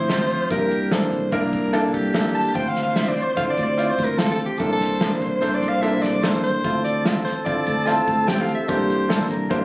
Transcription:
Already playing: D2 E4 C5
0.09 F3 C4 F4 E5, snare, closed hi-hat
0.30 closed hi-hat
0.50 C2 A#3 D4 E4 G4 A#4, kick, closed hi-hat
0.71 closed hi-hat
0.91 A#3 D4 E4 A4 C5, snare, closed hi-hat
1.12 C2, closed hi-hat
1.32 C2 A#3 D4 E4 A#4, kick, closed hi-hat
1.53 C2, kick, closed hi-hat
1.73 A#3 D4 E4 A4, closed hi-hat
1.93 C2 G4, kick, closed hi-hat
2.14 A#3 D4 E4 A4, snare, closed hi-hat
2.35 A5, closed hi-hat
2.55 D2 C4 E4 F4 C5 G5, kick, closed hi-hat
2.69 F5
2.76 snare, closed hi-hat
2.83 F5
2.96 C4 E4 F4 E5, snare, closed hi-hat
3.09 D5
3.17 closed hi-hat
3.23 C5
3.36 D3 C4 E4 F4 F5, kick, closed hi-hat
3.50 D5
3.58 D2, kick, closed hi-hat
3.63 D5
3.77 C4 E4 F4, closed hi-hat
3.90 C5
3.99 D2, kick, closed hi-hat
4.05 A#4
4.18 C4 E4 F4 A4, snare, closed hi-hat
4.32 A4
4.39 closed hi-hat
4.45 G4
4.58 C2 A#3 D4 E4 A4 C5, kick, closed hi-hat
4.72 A4
4.80 snare, closed hi-hat
5.00 A#3 D4 E4 A4, snare, closed hi-hat
5.21 C2, closed hi-hat
5.41 C2 A#3 D4 E4 A4 C5, closed hi-hat
5.54 D5
5.62 C2, closed hi-hat
5.68 F5
5.82 A#3 D4 E4 A4 E5, closed hi-hat
6.02 C2 D5, snare, closed hi-hat
6.23 A#3 D4 E4 A4 C5, snare, closed hi-hat
6.43 C5, closed hi-hat
6.64 D2 C4 E4 F4 A4, kick, closed hi-hat
6.84 D5, closed hi-hat
7.05 C4 E4 F4, snare, closed hi-hat
7.25 C5, snare, closed hi-hat
7.45 D3 C4 E4 F4 D5, kick, closed hi-hat
7.67 D2, kick, closed hi-hat
7.86 C4 E4 F4 A5, snare, closed hi-hat
8.08 D2, kick, closed hi-hat
8.27 C4 E4 G4 G5, snare, closed hi-hat
8.41 F5
8.49 closed hi-hat
8.55 E5
8.68 C2 A#3 D4 E4 G4 A4 C5, kick, closed hi-hat
8.90 closed hi-hat
9.09 A#3 D4 E4 A4, snare, closed hi-hat
9.30 C2 A#4, closed hi-hat
9.50 C2 A#3 D4 E4 G4 C5, kick, closed hi-hat

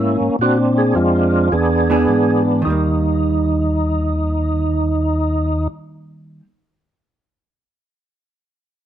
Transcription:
Already playing: G#2 A#3 C#4 E4
0.20 G#2
0.39 A#2 C4 D4 F#4
0.78 G#4
0.95 F2 G#3 D4 F4
1.52 E2 B3 D4 G#4
1.90 E3 B3 D4 G#4
2.08 G#2
2.62 D#2 D#3 D#4
2.67 G3 A#3

